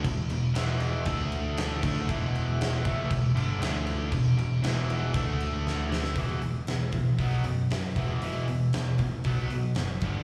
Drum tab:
CC |x-x-x-x-x-x-x-x-|x-x-x-x-x-x-x-x-|x-x-x-x-x-x-----|----------------|
HH |----------------|----------------|----------------|o-o-o-o-o-o-o-o-|
SD |----o-------o---|----o-------o---|----o-------o-oo|----o-------o---|
BD |o-------o-----o-|o-----o-o-------|o-------o-------|o-----o-o-----o-|

CC |----------------|
HH |o-o-o-o-o-o-o-o-|
SD |----o-------o---|
BD |------o-o-----o-|